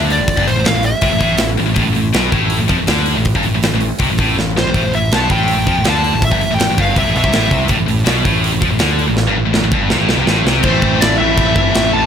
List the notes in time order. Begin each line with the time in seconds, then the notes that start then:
Already playing: D2 D3
0.10 D5, open hi-hat
0.19 A1 A2
0.28 kick, open hi-hat
0.37 G1 G2, kick
0.48 A1 A2 C5, open hi-hat
0.56 A1 A2
0.65 A1 A2 F5, snare, open hi-hat
0.74 A1 A2
0.83 E5, open hi-hat
1.01 C2 C3, kick, open hi-hat
1.10 A1 A2
1.19 A1 A2, kick, open hi-hat
1.38 A1 A2, snare, open hi-hat
1.57 A1 A2, open hi-hat
1.66 A1 A2
1.74 A1 A2, kick, open hi-hat
1.80 A2
1.84 A1 A2
1.89 A2
1.93 A1 A2, open hi-hat
2.13 B1 B2, snare, open hi-hat
2.31 A1 A2, kick, open hi-hat
2.50 open hi-hat
2.60 A1 A2
2.68 F2 F3, kick, open hi-hat
2.78 A1 A2
2.87 D2 D3, snare, open hi-hat
3.06 open hi-hat
3.16 A1 A2
3.25 kick, open hi-hat
3.35 G1 G2, kick
3.43 A1 A2, open hi-hat
3.54 A1 A2
3.62 A1 A2, snare, open hi-hat
3.73 A1 A2
3.81 open hi-hat
3.99 C2 C3, kick, open hi-hat
4.10 A1 A2
4.18 A1 A2, kick, open hi-hat
4.37 A1 A2, snare
4.57 A1 A2 C5, snare
4.66 A1 A2
4.74 A1 A2, kick, open hi-hat
4.85 A1 A2
4.93 A1 A2 E5, open hi-hat
5.12 B1 B2 A5, snare, open hi-hat
5.30 A1 A2 G5, kick, open hi-hat
5.48 open hi-hat
5.57 A1 A2
5.67 F2 F3, kick, open hi-hat
5.77 A1 A2
5.84 D2 D3, snare, open hi-hat
5.89 A5
6.04 open hi-hat
6.14 A1 A2
6.22 E5, kick, open hi-hat
6.32 G1 G2, kick
6.41 A1 A2, open hi-hat
6.51 A1 A2 G5
6.59 A1 A2, snare, open hi-hat
6.70 A1 A2
6.78 G1 G2 F5, kick, open hi-hat
6.95 C2 C3 E5, kick, open hi-hat
7.05 A1 A2
7.14 B1 B2 E5, open hi-hat
7.24 C2 C3, kick
7.33 A1 A2, snare, open hi-hat
7.51 C2 C3, kick, open hi-hat
7.68 A1 A2, kick, open hi-hat
7.77 A1 A2
7.87 A1 A2, open hi-hat
8.05 B1 B2, snare, open hi-hat
8.24 A1 A2, kick, open hi-hat
8.44 open hi-hat
8.52 A1 A2
8.62 F2 F3, kick, open hi-hat
8.70 A1 A2
8.79 D2 D3, snare, open hi-hat
8.99 open hi-hat
9.08 A1 A2
9.17 snare
9.28 G1 G2
9.36 A1 A2
9.46 A1 A2
9.53 A1 A2, snare
9.64 A1 A2
9.72 G1 G2, kick
9.90 C2 C3, snare
10.00 A1 A2
10.09 B1 B2, snare
10.17 C2 C3
10.26 A1 A2, snare
10.45 C2 C3, snare
10.63 A1 A2 C4 C5, kick, china
10.67 E3 A3 C4 E4
10.82 A1, kick
11.01 A1 D4 D5, snare, china
11.18 A1 E3 A3 E4 E5
11.23 A2 A3 C4
11.37 A1, kick, china
11.56 G1 E4 E5, kick
11.74 A1, snare, china
11.91 A1 A4 A5